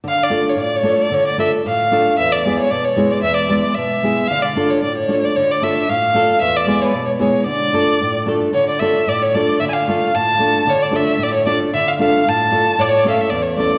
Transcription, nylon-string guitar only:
\new Staff \with { instrumentName = "Nylon-string guitar" } { \time 2/4 \tempo 4 = 113 << { r8 <a d' f' a'>8 r8 <a d' f' a'>8 | r8 <a d' f' a'>8 r8 <a d' f' a'>8 | r8 <gis b e' gis'>8 r8 <gis b e' gis'>8 | r8 <gis b e' gis'>8 r8 <gis b e' gis'>8 |
r8 <a d' f' a'>8 r8 <a d' f' a'>8 | r8 <a d' f' a'>8 r8 <a d' f' a'>8 | r8 <gis b e' gis'>8 r8 <gis b e' gis'>8 | r8 <a d' f' a'>8 r8 <a d' f' a'>8 |
r8 <a d' f' a'>8 r8 <a d' f' a'>8 | r8 <a d' f' a'>8 r8 <a d' f' a'>8 | r8 <a d' f' a'>8 r8 <a d' f' a'>8 | r8 <a d' f' a'>8 r8 <a d' f' a'>8 |
r8 <a cis' e' a'>8 r8 <a cis' e' a'>8 | } \\ { d4 a,4 | d4 a,4 | e,4 b,4 | e,4 b,4 |
d4 a,4 | d4 a,4 | e,4 b,4 | d4 a,4 |
d4 a,4 | d4 a,4 | d4 a,4 | d4 a,4 |
a,4 e,4 | } >> }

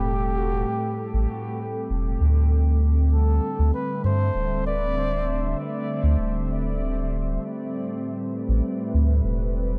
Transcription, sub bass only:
\new Staff \with { instrumentName = "Sub bass" } { \clef bass \time 4/4 \key a \minor \tempo 4 = 98 e,,4 r8. a,,16 r4 e,,8 d,8~ | d,4. r16 d,16 r8 g,8 d,,4~ | d,,4 r8. d,16 d,,2 | r4. r16 a,,16 r8 d,8 e,,4 | }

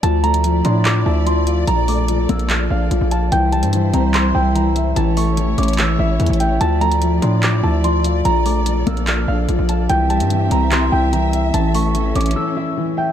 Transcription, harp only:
\new Staff \with { instrumentName = "Harp" } { \time 4/4 \key d \minor \tempo 4 = 146 a''8 bes''8 r8 c'''8 d'''8 a''8 c'''4 | bes''8 d'''8 r8 e'''8 f'''8 f''4 a''8 | g''8 a''8 r8 bes''8 c'''8 g''8 bes''4 | a''8 cis'''8 r8 d'''8 e'''8 e''4 g''8 |
a''8 bes''8 r8 c'''8 d'''8 a''8 c'''4 | bes''8 d'''8 r8 e'''8 f'''8 f''4 a''8 | g''8 a''8 r8 bes''8 c'''8 g''8 bes''4 | a''8 cis'''8 r8 d'''8 e'''8 e''4 g''8 | }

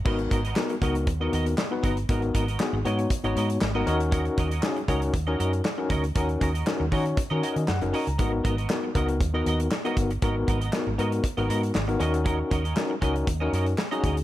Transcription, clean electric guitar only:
\new Staff \with { instrumentName = "Clean electric guitar" } { \time 4/4 \key gis \minor \tempo 4 = 118 <b fis' ais' dis''>16 r16 <b fis' ais' dis''>16 <b fis' ais' dis''>16 r8 <b fis' ais' dis''>16 r8 <b fis' ais' dis''>16 <b fis' ais' dis''>16 r8. <b fis' ais' dis''>16 r16 | <b fis' ais' dis''>16 r16 <b fis' ais' dis''>16 <b fis' ais' dis''>16 r8 <b fis' ais' dis''>16 r8 <b fis' ais' dis''>16 <b fis' ais' dis''>16 r8 <b fis' ais' dis''>16 <cis' fis' ais' dis''>16 r16 | <cis' fis' ais' dis''>16 r16 <cis' fis' ais' dis''>16 <cis' fis' ais' dis''>16 r8 <cis' fis' ais' dis''>16 r8 <cis' fis' ais' dis''>16 <cis' fis' ais' dis''>16 r8. <cis' fis' ais' dis''>16 r16 | <cis' fis' ais' dis''>16 r16 <cis' fis' ais' dis''>16 <cis' fis' ais' dis''>16 r8 <cis' fis' ais' dis''>16 r8 <cis' fis' ais' dis''>16 <cis' fis' ais' dis''>16 r8. <cis' fis' ais' dis''>16 r16 |
<b fis' ais' dis''>16 r16 <b fis' ais' dis''>16 <b fis' ais' dis''>16 r8 <b fis' ais' dis''>16 r8 <b fis' ais' dis''>16 <b fis' ais' dis''>16 r8 <b fis' ais' dis''>16 r8 | <b fis' ais' dis''>16 r16 <b fis' ais' dis''>16 <b fis' ais' dis''>16 r8 <b fis' ais' dis''>16 r8 <b fis' ais' dis''>16 <b fis' ais' dis''>16 r8. <cis' fis' ais' dis''>16 r16 | <cis' fis' ais' dis''>16 r16 <cis' fis' ais' dis''>16 <cis' fis' ais' dis''>16 r8 <cis' fis' ais' dis''>16 r8 <cis' fis' ais' dis''>16 <cis' fis' ais' dis''>16 r8 <cis' fis' ais' dis''>16 <cis' fis' ais' dis''>16 r16 | }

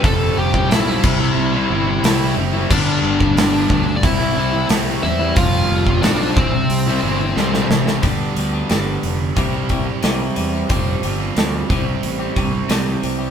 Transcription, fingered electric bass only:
\new Staff \with { instrumentName = "Fingered electric bass" } { \clef bass \time 4/4 \key c \major \tempo 4 = 90 f,,8 f,,8 b,,8 c,8 c,8 g,,8 c,8 fis,,8 | g,,8 g,,8 g,,8 d,8 c,8 c,8 c,8 e,8 | f,,8 f,,8 b,,8 c,8 c,8 g,,8 c,8 a,,8 | g,,8 d,8 g,,8 f,,8 c,4 c,8 e,8 |
f,,8 g,,8 d,8 c,8 a,,8 c,8 c,8 c,8 | }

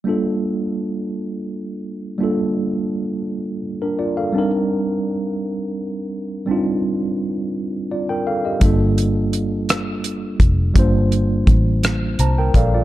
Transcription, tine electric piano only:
\new Staff \with { instrumentName = "Tine electric piano" } { \time 6/8 \key g \minor \tempo 4. = 56 << { r2. | r2 r16 <d' bes'>16 <f' d''>16 <a' f''>16~ | <a' f''>16 r2 r8. | r2 <f' d''>16 <bes' g''>16 <a' f''>16 <g' ees''>16~ |
<g' ees''>16 r2 r8. | r2 <c'' a'' bes''>16 <bes' g''>16 <a' d'' f''>16 <f' d''>16 | } \\ { <g bes d' f' a'>2. | <g bes d' f' a'>2. | <g c' d' ees' bes'>2. | <g c' d' ees' f'>2. |
<g bes d' f' a'>2. | <g bes d' f' c''>2. | } >> }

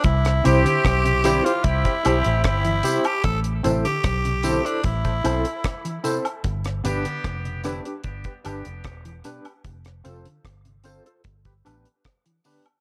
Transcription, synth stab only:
\new Staff \with { instrumentName = "Synth stab" } { \time 4/4 \key c \major \tempo 4 = 75 r8 <c' e' g' c''>16 r8. <c' e' g' c''>16 <g' c''>16 r16 <g' c''>16 <c' e' g' c''>16 r8. <c' e' g' c''>16 <g' c''>16 | r8 <c' e' a' c''>16 r8. <c' e' a' c''>16 <a' c''>16 r16 <a' c''>16 <c' e' a' c''>16 r8. <c' e' a' c''>16 r16 | r8 <b d' g' b'>16 r8. <b d' g' b'>16 <g' b'>16 r16 <g' b'>16 <b d' g' b'>16 r8. <b d' g' b'>16 <g' b'>16 | r8 <c' f' a' c''>16 r8. <c' f' a' c''>16 <a' c''>16 r16 <g' b'>16 <b d' g' b'>16 r8. <b d' g' b'>16 r16 | }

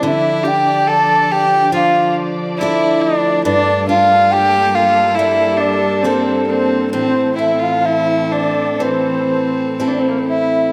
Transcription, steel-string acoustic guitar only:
\new Staff \with { instrumentName = "Steel-string acoustic guitar" } { \time 4/4 \key d \minor \tempo 4 = 69 d8 d'4. f4 <a d' e'>4 | g,8 d'4. g4 <bes d' a'>4 | a,8 e'4. e4 <c' e' a'>4 | }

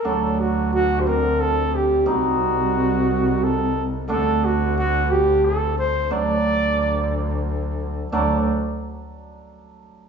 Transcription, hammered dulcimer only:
\new Staff \with { instrumentName = "Hammered dulcimer" } { \time 3/4 \tempo 4 = 89 <fis a d'>4. <d c'>4. | <g c' ees'>2. | <d a d'>2. | <fis a d'>2. |
<fis a d'>8 r2 r8 | }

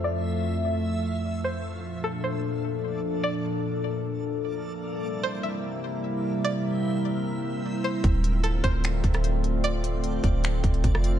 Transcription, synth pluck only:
\new Staff \with { instrumentName = "Synth pluck" } { \time 4/4 \key d \minor \tempo 4 = 150 d''2.~ d''8 c''8 | r4 a'8 c''4. r4 | d''1 | r4 c''8 e''4. r4 |
d''2.~ d''8 c''8 | r4 a'8 c''4. r4 | d''1 | }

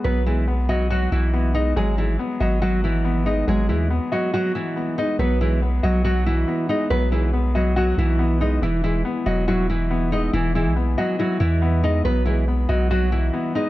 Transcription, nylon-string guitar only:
\new Staff \with { instrumentName = "Nylon-string guitar" } { \time 4/4 \key b \major \tempo 4 = 140 <b b'>8 <e e'>8 r8 <fis fis'>8 <fis fis'>8 <e e'>4 <dis' dis''>8 | <gis gis'>8 <e e'>8 r8 <fis fis'>8 <fis fis'>8 <e e'>4 <dis' dis''>8 | <gis gis'>8 <e e'>8 r8 <fis fis'>8 <fis fis'>8 <e e'>4 <dis' dis''>8 | <b b'>8 <e e'>8 r8 <fis fis'>8 <fis fis'>8 <e e'>4 <dis' dis''>8 |
<b b'>8 <e e'>8 r8 <fis fis'>8 <fis fis'>8 <e e'>4 <dis' dis''>8 | <e e'>8 <e e'>8 r8 <fis fis'>8 <fis fis'>8 <e e'>4 <dis' dis''>8 | <e e'>8 <e e'>8 r8 <fis fis'>8 <fis fis'>8 <e e'>4 <dis' dis''>8 | <b b'>8 <e e'>8 r8 <fis fis'>8 <fis fis'>8 <e e'>4 <dis' dis''>8 | }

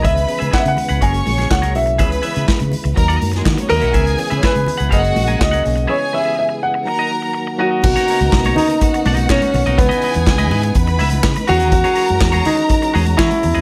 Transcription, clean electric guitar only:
\new Staff \with { instrumentName = "Clean electric guitar" } { \time 4/4 \key cis \dorian \tempo 4 = 123 <gis' b' e''>8 r16 <gis' b' e''>16 <gis' b' e''>8 r16 <gis' b' fis''>16 <cis' gis' ais'>8 r16 <cis' gis' cis''>16 r16 <cis' gis' ais'>8 r16 | <gis' b' e''>8 <gis' b' e''>16 <gis' b' e''>16 r4 r16 <fis' ais' dis''>8 r8. <fis' ais' dis''>16 <fis' ais' dis''>16 | <gis' b' e''>8 r16 <gis' b' e''>16 <gis' b' e''>8 r16 <gis' b' fis''>16 <gis' ais' fis''>8 r16 <gis' ais' gis''>16 r16 <gis' ais' fis''>8 r16 | <gis' b' e''>8 <gis' b' e''>16 <gis' b' e''>16 r4 r16 <fis' ais' dis''>8 r8. <fis' ais' dis''>16 <fis' ais' dis''>16 |
r16 <dis' ais' cis''>16 <dis' ais' cis''>16 r8 <dis' ais' cis''>16 <dis' ais' cis''>16 r8. <dis' ais' dis''>8 <dis' ais' cis''>8 r16 <dis' ais' dis''>16 | r16 <e' b' dis''>16 <e' b' dis''>16 r8 <e' b' dis''>16 <e' b' dis''>16 r8. <e' b' e''>8 r8 <fis' gis' cis''>16 <fis' gis' dis''>16 | r16 <fis' gis' cis''>16 <fis' gis' cis''>16 r8 <fis' gis' cis''>16 <fis' gis' cis''>16 r8. <fis' gis' dis''>8 <fis' gis' cis''>8 r16 <fis' gis' dis''>16 | }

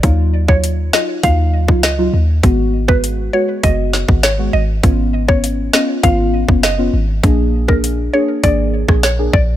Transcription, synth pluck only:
\new Staff \with { instrumentName = "Synth pluck" } { \time 4/4 \key ees \minor \tempo 4 = 100 r8. des''16 r8 ees''16 r16 f''8. r16 ees''8. r16 | r8. ces''16 r8 des''16 r16 ees''8. r16 des''16 r16 ees''16 r16 | r8. des''16 r8 ees''16 r16 f''8. r16 ees''8. r16 | r8. bes'16 r8 des''16 r16 d''8. r16 des''16 r16 d''16 r16 | }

